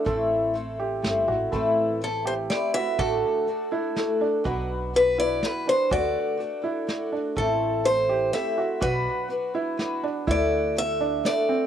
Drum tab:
HH |x-x-x-|x-x-x-|x-x-x-|x-x-x-|
SD |----o-|----o-|----o-|----o-|
BD |o-----|o-----|o-----|o-----|

HH |x-x-x-|x---x-|x-x-x-|x-x-x-|
SD |----o-|----o-|----o-|----o-|
BD |o-----|o-----|o-----|o-----|